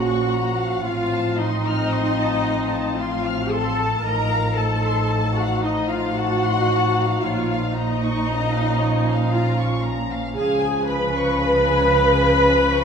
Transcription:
Already playing: double bass section A#1, cello section A#2, french horn section F3 C#4, viola section F#4, violin section F#5
0.04 violin section C#6
0.30 violin section A#5
0.57 violin section F5
0.83 double bass section A1, cello section A2, french horn section F3 C4, viola section F4, violin section F5
1.13 violin section A5
1.38 viola section D#4, violin section D#5 C6
1.65 violin section F6
1.92 violin section C6
2.18 violin section A5
2.45 violin section F5
2.70 violin section A5
2.96 viola section F4, violin section F5 C6
3.26 violin section F6
3.51 viola section A4, violin section A5 C6
3.77 violin section A5
4.02 double bass section A1, cello section A2, french horn section F3 D#4, viola section A#4, violin section D#5 A#5
4.30 violin section F5
4.56 viola section A4, violin section A5
4.85 violin section C6
5.10 violin section A5
5.36 viola section F#4, violin section F5 F#5
5.63 viola section D#4, violin section D#5
5.89 viola section F4, violin section F5
6.16 viola section F#4, violin section F#5 A5
6.44 violin section C6
6.72 violin section A5
6.98 violin section F5
7.22 double bass section A#1, cello section A#2, french horn section F3, viola section F4, violin section C#5 F5
7.51 violin section F5
7.75 viola section D#4, violin section D#5 A#5
8.01 violin section C#6
8.27 french horn section C#4, violin section A#5
8.54 violin section F5
8.80 violin section C#5
9.06 violin section F5
9.30 viola section F4, violin section F5 A#5
9.59 violin section C#6
9.84 violin section A#5
10.11 violin section F5
10.35 double bass section C#2, cello section C#3, french horn section F3 C#4, viola section G#4, violin section F5 G#5
10.62 violin section G#5
10.88 viola section B4, violin section B5
11.15 violin section C#6
11.40 violin section B5
11.65 violin section G#5
11.91 violin section F5
12.16 violin section G#5
12.42 violin section B5
12.70 violin section C#6

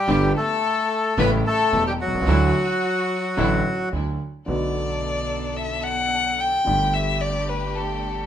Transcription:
Already playing: bandoneon G3 G4, violin G4
0.08 upright bass G1, grand piano G1 G2 D3 G3 B3 G4, string section B3 D4 G4
0.37 bandoneon A3 A4, violin A4
1.17 upright bass A1, grand piano A1 A2 C#3 G3 A3 E4, string section A3 C#4 G4, bandoneon B3 B4, violin B4
1.46 bandoneon A3 A4, violin A4
1.72 upright bass E1, grand piano E1 E2, string section A3 C#4 G4
1.87 bandoneon G3 G4, violin G4
2.00 bandoneon F#3 F#4, violin F#4
2.07 upright bass B1, grand piano B1
2.14 upright bass C2, grand piano C2
2.21 upright bass C#2, grand piano C#2
2.27 upright bass D2, grand piano D2 D3 F#3 A3 E4, string section F#3 D4 E4
3.37 upright bass A1, grand piano A1 A2 D3 F#3 A3 E4, string section F#3 D4 E4
3.93 upright bass D2, grand piano D2 D3, string section F#3 D4 E4
4.46 upright bass B1, grand piano B1 B2 D3 A3 B3 F#4, string section B3 D4 A4, violin D5
5.56 violin E5
5.84 violin F#5
6.40 violin G5
6.65 grand piano G1 G2 D3 G3 A3 G4, upright bass G1, string section A3 D4 G4
6.94 violin E5
7.21 violin D5
7.49 violin B4
7.75 violin A4

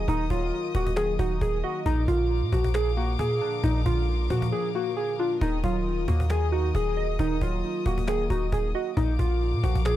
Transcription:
Already playing: synth keys D#3 F#3 A#3 D#4 D#5, string section A#4 D#5 D#6
0.08 808-style bass D#1, synth keys D#3 D#4, cajon bass
0.30 808-style bass D#1, synth keys F#3 F4, cajon bass
0.53 cajon slap
0.75 808-style bass D#1, synth keys A#3 F#4, cajon bass
0.87 cajon bass
0.96 synth keys D#3 G#4, cajon slap
1.19 808-style bass D#1, synth keys D#4 F#4, cajon bass
1.31 cajon slap
1.41 808-style bass D#1, synth keys G#4, cajon bass
1.64 synth keys F#4 D#5
1.86 808-style bass A#1, synth keys A#2 D#4, string section F5 D6, cajon bass
2.08 808-style bass A#1, synth keys D3 F4, cajon bass
2.31 cajon slap
2.42 808-style bass A#2
2.52 808-style bass A#1, synth keys F3 F#4, cajon bass
2.64 cajon bass
2.74 synth keys A#2 G#4, cajon slap
2.87 cajon slap
2.92 cajon slap
2.97 synth keys A#3 F#4
3.04 cajon slap
3.12 cajon slap
3.19 808-style bass A#2, synth keys G#4, cajon bass
3.41 synth keys D4, cajon slap
3.64 808-style bass A#1, synth keys A#2 D#4, cajon bass
3.86 808-style bass A#1, synth keys D3 F4, cajon bass
4.01 cajon slap
4.08 cajon slap
4.30 808-style bass A#2, synth keys F3 F#4, cajon bass
4.42 cajon bass
4.52 synth keys A#2 G#4
4.75 synth keys A#3 F#4
4.97 synth keys G#4
5.19 synth keys D4 F4
5.41 808-style bass D#1, synth keys D#3 D#4, string section D#5 D#6, cajon bass
5.64 808-style bass D#1, synth keys F#3 F4, cajon bass
5.86 cajon slap
6.08 808-style bass D#2, synth keys A#3 F#4, cajon bass
6.20 cajon bass
6.30 synth keys D#3 G#4, cajon slap
6.52 synth keys D#4 F#4, cajon slap
6.60 cajon slap
6.67 cajon slap
6.75 808-style bass D#1, synth keys G#4, cajon bass
6.97 synth keys D#5, cajon slap
7.19 808-style bass D#1, synth keys D#3 D#4, cajon bass
7.41 808-style bass D#1, synth keys F#3 F4, cajon bass
7.64 cajon slap
7.86 808-style bass D#1, synth keys A#3 F#4, cajon bass
7.98 cajon bass
8.07 synth keys D#3 G#4, cajon slap
8.30 808-style bass D#1, synth keys D#4 F#4, cajon bass
8.52 808-style bass D#1, synth keys G#4, cajon bass
8.75 synth keys F#4 D#5
8.97 808-style bass A#1, synth keys A#2 D#4, string section A#4 F5 D6, cajon bass
9.19 808-style bass A#1, synth keys D3 F4, cajon bass
9.42 cajon slap
9.53 808-style bass A#2
9.63 808-style bass A#1, synth keys F3 F#4, cajon bass
9.75 808-style bass A#1, cajon bass
9.85 synth keys A#2 G#4, cajon slap

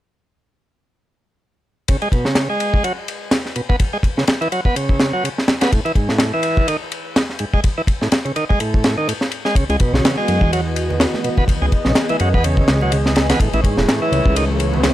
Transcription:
1.88 tonewheel organ C#3, kick, ride
2.02 tonewheel organ G#3, ride
2.12 tonewheel organ B2, kick, ride
2.25 tonewheel organ C#3, snare
2.35 snare, ride
2.50 tonewheel organ G#3
2.60 ride
2.74 kick
2.84 tonewheel organ F#3, ride
3.08 ride
3.31 snare, ride
3.46 snare
3.56 tonewheel organ B2, ride
3.69 tonewheel organ B3, kick
3.80 kick, ride
3.93 tonewheel organ G#3
4.03 kick, ride
4.17 tonewheel organ C#3, snare
4.27 snare, ride
4.41 tonewheel organ E3, ride
4.52 tonewheel organ F#3, ride
4.65 tonewheel organ B3, kick
4.76 tonewheel organ C#3, ride
4.89 kick
5.00 snare, ride
5.13 tonewheel organ F#3
5.24 tonewheel organ C#3, ride
5.38 snare
5.48 snare, ride
5.61 tonewheel organ B3, snare, ride
5.72 tonewheel organ A2, kick, ride
5.85 tonewheel organ E3, ride
5.95 tonewheel organ G#2, kick, ride
6.09 tonewheel organ A2, snare
6.18 snare, ride
6.34 tonewheel organ E3
6.43 ride
6.57 kick
6.68 tonewheel organ D#3, ride
6.92 ride
7.16 snare, ride
7.30 snare
7.39 tonewheel organ G#2, ride
7.54 tonewheel organ G#3, kick
7.64 kick, ride
7.78 tonewheel organ E3
7.87 kick, ride
8.01 tonewheel organ A2, snare
8.12 snare, ride
8.25 tonewheel organ C#3, ride
8.36 tonewheel organ D#3, ride
8.49 tonewheel organ G#3, kick
8.60 tonewheel organ A2, ride
8.74 kick
8.84 snare, ride
8.98 tonewheel organ D#3
9.08 tonewheel organ A2, ride
9.21 snare
9.32 ride
9.45 tonewheel organ G#3, snare
9.55 analog synth bass C#2, tonewheel organ C#3, analog synth pad E3 B3 F#4 D#5, kick, ride
9.69 analog synth bass C#2, tonewheel organ G#3, ride
9.80 tonewheel organ B2, kick, ride
9.93 analog synth bass B1, tonewheel organ C#3, snare
10.05 snare, ride
10.18 tonewheel organ G#3
10.28 analog synth bass F#2, ride
10.41 analog synth bass E2, kick
10.53 tonewheel organ F#3, ride
10.76 ride
10.90 low conga
11.00 snare, ride
11.14 snare, high conga
11.24 tonewheel organ B2, ride
11.38 tonewheel organ B3, kick, low conga
11.48 analog synth bass C#2, analog synth pad G#4, kick, ride
11.62 analog synth bass C#2, tonewheel organ G#3
11.72 kick, ride
11.85 analog synth bass B1, tonewheel organ C#3, snare
11.95 snare, ride
12.09 tonewheel organ E3, ride, high conga
12.20 analog synth bass F#2, tonewheel organ F#3, ride
12.34 analog synth bass E2, tonewheel organ B3, kick
12.44 tonewheel organ C#3, ride
12.57 kick
12.68 analog synth bass C#2, snare, ride
12.81 tonewheel organ F#3, low conga
12.92 tonewheel organ C#3, ride
13.06 snare
13.16 snare, ride
13.30 tonewheel organ B3, snare, ride, high conga, low conga
13.40 analog synth bass A1, tonewheel organ A2, analog synth pad A3 C#5, kick, ride, riser
13.53 analog synth bass A1, tonewheel organ E3, ride
13.64 tonewheel organ G#2, kick, ride
13.77 analog synth bass E1, tonewheel organ A2, snare
13.89 snare, ride
14.02 tonewheel organ E3
14.12 analog synth bass C#2, ride
14.25 analog synth bass C#2, kick
14.36 tonewheel organ D#3, ride
14.60 ride
14.74 low conga
14.83 snare, ride

